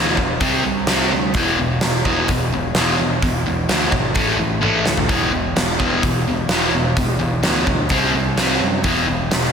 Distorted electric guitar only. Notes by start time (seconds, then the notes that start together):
Already playing: E2 B2 E3
0.18 E2 B2
0.40 C3 G3 C4
0.64 C3 G3
0.88 C3 G3 C4
1.13 C3 G3
1.36 E2 B2 E3
1.60 E2 B2
1.83 E2 B2
2.06 E2 B2 E3
2.30 E2 B2
2.53 E2 B2
2.76 E2 B2 E3
3.00 E2 B2
3.23 E2 B2
3.46 E2 B2
3.69 E2 B2 E3
3.92 E2 B2
4.15 A2 E3 A3
4.37 A2 E3
4.61 A2 E3 A3
4.85 A2 E3
5.09 E2 B2 E3
5.32 E2 B2
5.56 E2 B2
5.79 E2 B2 E3
6.03 E2 B2
6.28 E2 B2
6.51 E2 B2 E3
6.74 E2 B2
6.97 E2 B2
7.19 E2 B2
7.43 E2 B2 E3
7.67 E2 B2
7.91 C3 G3 C4
8.15 C3 G3
8.37 C3 G3 C4
8.61 C3 G3
8.84 E2 B2 E3
9.08 E2 B2
9.31 E2 B2